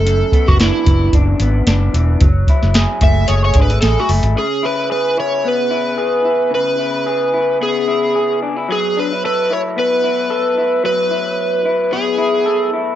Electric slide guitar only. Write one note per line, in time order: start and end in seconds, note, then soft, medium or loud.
0.00 0.50 A4 medium
0.48 0.60 F#4 medium
0.60 1.14 E4 medium
3.03 3.28 E5 loud
3.28 3.44 C#5 loud
3.45 3.62 C#5 loud
3.62 3.81 B4 medium
3.81 3.99 A4 medium
4.00 4.07 F#4 medium
4.38 4.65 G#4 medium
4.65 4.91 B4 medium
4.92 5.16 B4 medium
5.20 5.46 C#5 medium
5.48 6.54 B4 medium
6.55 7.58 B4 loud
7.63 8.38 G#4 medium
8.72 8.98 G#4 medium
8.99 9.24 B4 medium
9.26 9.52 B4 medium
9.53 9.60 C#5 medium
9.79 10.84 B4 loud
10.86 11.96 B4 loud
11.93 12.69 G#4 medium